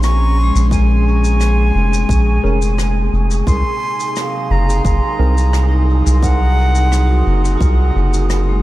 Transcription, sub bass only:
0.00 0.51 A#1 medium
0.55 1.72 A#1 loud
1.75 2.05 F1 loud
2.09 2.40 A#1 medium
2.44 3.09 F1 medium
3.13 3.43 F1 medium
3.47 3.63 C2 loud
4.50 4.81 F#1 loud
4.85 5.01 F#1 medium
5.19 6.03 C2 medium
6.06 7.23 C2 loud
7.26 7.57 F#1 loud
7.60 7.91 C2 medium
7.96 8.61 F#1 medium

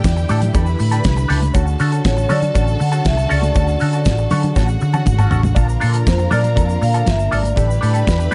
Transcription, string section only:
0.00 7.53 D3 medium
0.00 1.53 E3 medium
0.00 1.53 G3 medium
0.00 1.53 E4 medium
1.55 5.53 C#3 medium
1.55 5.53 F#3 medium
1.55 5.53 F#4 medium
5.57 7.55 F3 medium
5.57 7.55 A#3 medium
5.57 7.55 F4 medium
7.57 8.35 D3 medium
7.57 8.35 G3 medium
7.57 8.35 E4 medium
7.57 8.35 G4 medium

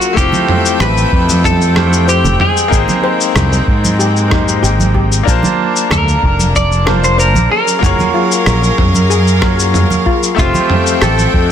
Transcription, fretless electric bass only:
0.17 0.29 F1 loud
0.80 1.04 A1 medium
1.12 2.26 F2 medium
2.24 2.36 F1 medium
2.72 2.84 G#1 loud
3.36 3.60 C2 medium
3.67 4.63 G#2 medium
4.63 5.21 G#1 medium
5.27 5.39 A#1 loud
5.91 6.15 D2 medium
6.23 7.35 F1 medium
7.35 7.47 A#1 medium
7.83 7.95 F#1 loud
8.47 8.70 A#1 medium
8.78 9.84 F#2 medium
10.38 10.50 F1 loud
11.02 11.26 A1 medium
11.34 11.52 F2 medium

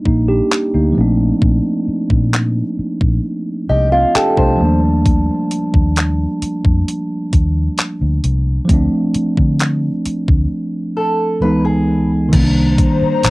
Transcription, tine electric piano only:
0.00 0.92 G3 medium
0.06 0.28 A#3 medium
0.06 0.27 D#4 medium
0.28 0.72 D4 medium
0.28 0.72 G4 medium
0.74 1.18 A#3 medium
0.74 1.17 D#4 medium
0.92 4.54 F3 medium
0.92 3.65 A3 medium
0.98 3.66 C4 medium
0.98 3.67 D4 medium
3.70 3.91 D#5 medium
3.92 4.14 C4 medium
3.92 4.14 F4 medium
3.92 4.13 F5 medium
4.15 4.37 D4 medium
4.15 4.37 G4 medium
4.15 4.36 G5 medium
4.38 4.81 A3 medium
4.38 4.64 D4 medium
4.38 5.02 A5 medium
4.56 8.18 F3 medium
4.56 8.19 G3 medium
4.62 8.21 A#3 medium
4.62 8.22 D4 medium
8.65 11.36 F3 medium
8.65 11.37 A3 medium
8.71 11.39 C4 medium
8.71 11.40 D4 medium
11.40 12.32 C#2 medium
11.40 12.33 E3 medium
11.40 12.33 G#3 medium
11.40 12.34 B3 medium
11.45 12.34 D#4 medium
12.29 13.30 D#3 medium
12.29 13.30 G3 medium
12.35 13.30 A#3 medium
12.35 12.42 C#4 medium
12.44 13.30 D4 medium

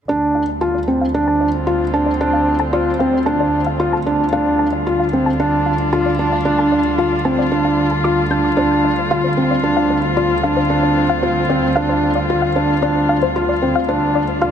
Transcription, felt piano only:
0.09 0.42 D4 medium
0.61 0.78 F4 medium
0.88 1.04 C4 medium
1.14 1.48 D4 medium
1.67 1.84 F4 medium
1.94 2.10 D4 medium
2.21 2.54 D4 medium
2.73 2.90 F4 medium
3.00 3.17 C4 medium
3.26 3.60 D4 medium
3.80 3.96 F4 medium
4.07 4.23 D4 medium
4.33 4.66 D4 medium
4.87 5.03 F4 medium
5.13 5.30 C4 medium
5.40 5.73 D4 medium
5.93 6.09 F4 medium
6.19 6.36 D4 medium
6.45 6.79 D4 medium
6.98 7.15 F4 medium
7.25 7.42 C4 medium
7.52 7.85 D4 medium
8.04 8.21 F4 medium
8.30 8.47 D4 medium
8.57 8.90 D4 medium
9.11 9.28 F4 medium
9.37 9.54 C4 medium
9.63 9.97 D4 medium
10.17 10.34 F4 medium
10.44 10.60 D4 medium
10.70 11.03 D4 medium
11.23 11.40 F4 medium
11.50 11.67 C4 medium
11.76 12.10 D4 medium
12.30 12.46 F4 medium
12.56 12.73 D4 medium
12.82 13.16 D4 medium
13.36 13.53 F4 medium
13.62 13.79 C4 medium
13.89 14.22 D4 medium
14.41 14.51 F4 medium

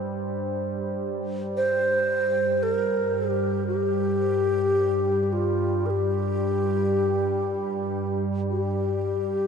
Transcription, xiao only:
1.57 2.64 C5 medium
2.63 3.30 A#4 medium
3.29 3.67 G4 medium
3.67 5.23 G4 medium
5.23 5.34 G4 soft
5.33 5.88 F4 medium
5.86 5.91 A#4 medium
5.90 8.23 G4 medium
8.50 9.47 G4 medium

